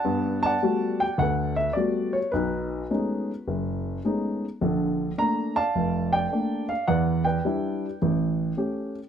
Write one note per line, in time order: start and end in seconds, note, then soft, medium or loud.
0.00 0.44 D5 medium
0.00 0.45 F#5 medium
0.00 0.39 A5 loud
0.05 0.54 G2 medium
0.05 0.55 B3 medium
0.43 1.54 D5 medium
0.43 1.17 F#5 medium
0.43 1.02 A5 loud
0.63 1.03 G3 medium
0.63 1.03 A3 medium
0.63 1.03 B3 soft
0.63 1.03 F#4 medium
1.00 1.19 G5 medium
1.18 1.68 D2 medium
1.18 1.55 F#5 medium
1.22 2.30 A4 medium
1.22 2.30 B4 medium
1.56 1.74 E5 medium
1.73 2.16 G3 soft
1.73 2.17 A3 soft
1.73 2.17 B3 soft
1.73 2.14 D5 medium
1.77 2.17 F#4 medium
2.13 2.31 C#5 medium
2.32 2.82 B1 medium
2.32 2.89 D#4 medium
2.32 4.00 F#4 soft
2.32 3.99 B4 medium
2.90 3.30 G#3 medium
2.90 3.30 A3 soft
2.90 3.30 B3 soft
2.90 3.30 C#4 medium
2.90 3.30 D#4 medium
3.48 3.96 F#1 medium
4.04 4.44 G#3 medium
4.04 4.44 A3 soft
4.04 4.44 B3 soft
4.04 4.44 C#4 soft
4.04 4.45 D#4 medium
4.61 5.10 A#1 medium
4.61 5.10 D3 medium
5.18 5.58 A3 medium
5.18 5.58 A#3 soft
5.18 5.58 D4 medium
5.18 5.53 A#5 medium
5.56 6.12 D5 medium
5.56 6.65 F5 medium
5.56 6.14 A5 loud
5.75 6.24 F1 medium
6.13 6.84 D5 medium
6.13 6.65 G5 medium
6.31 6.71 A3 soft
6.31 6.72 A#3 soft
6.31 6.72 D4 medium
6.69 6.86 F5 medium
6.88 7.37 E2 medium
6.88 7.25 B4 medium
6.88 7.25 D5 medium
6.88 7.23 F#5 medium
7.25 8.92 B4 medium
7.25 7.97 D5 medium
7.25 8.91 G5 medium
7.45 7.85 G3 medium
7.45 7.85 D4 soft
7.45 7.85 E4 medium
8.02 8.51 A1 medium
8.57 8.98 A3 medium
8.57 8.98 C#4 soft
8.57 8.98 G4 medium